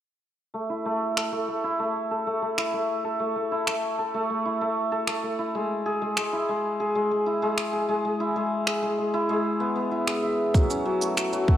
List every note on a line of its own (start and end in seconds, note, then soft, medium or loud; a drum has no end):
0.54 0.85 A3 medium
0.70 1.64 E4 medium
0.85 1.32 A3 medium
1.17 2.10 A4 medium
1.17 finger snap medium
1.32 1.48 A3 medium
1.48 1.79 A3 medium
1.64 2.57 E4 medium
1.79 2.26 A3 medium
2.11 3.04 A4 medium
2.27 2.42 A3 medium
2.42 2.73 A3 medium
2.58 3.51 E4 medium
2.58 finger snap medium
2.73 3.19 A3 medium
3.04 3.98 A4 medium
3.20 3.35 A3 medium
3.36 3.67 A3 medium
3.52 4.45 E4 medium
3.67 4.14 A3 medium
3.67 finger snap medium
3.99 4.91 A4 medium
4.14 4.29 A3 medium
4.30 4.61 A3 medium
4.46 5.38 E4 medium
4.61 5.07 A3 medium
4.92 5.61 A4 medium
5.07 5.23 A3 medium
5.07 finger snap medium
5.23 5.61 A3 medium
5.39 6.32 E4 medium
5.55 6.00 G#3 medium
5.86 6.79 G#4 medium
6.02 6.16 G#3 medium
6.17 6.47 G#3 medium
6.17 finger snap medium
6.33 7.26 E4 medium
6.49 6.94 G#3 medium
6.80 7.73 G#4 medium
6.95 7.10 G#3 medium
7.11 7.41 G#3 medium
7.26 8.20 E4 medium
7.42 7.87 G#3 medium
7.58 finger snap medium
7.73 8.67 G#4 medium
7.89 8.04 G#3 medium
8.05 8.35 G#3 medium
8.20 9.13 E4 medium
8.36 8.81 G#3 medium
8.67 10.07 G#4 medium
8.67 finger snap medium
8.82 8.97 G#3 medium
8.98 9.28 G#3 medium
9.14 9.91 E4 loud
9.29 10.60 G#3 medium
9.60 9.75 B3 medium
9.76 11.57 B3 medium
9.91 11.57 E4 medium
10.07 11.07 G#4 medium
10.07 finger snap medium
10.23 11.57 E5 medium
10.54 10.84 F#3 medium
10.54 kick loud
10.54 shaker soft
10.70 11.57 C#4 medium
10.70 shaker soft
10.86 11.31 F#3 medium
11.01 11.57 A3 medium
11.01 shaker medium
11.17 11.57 F#4 medium
11.17 finger snap medium
11.17 shaker soft
11.32 11.47 F#3 medium
11.32 shaker soft
11.48 11.57 F#3 medium
11.48 kick loud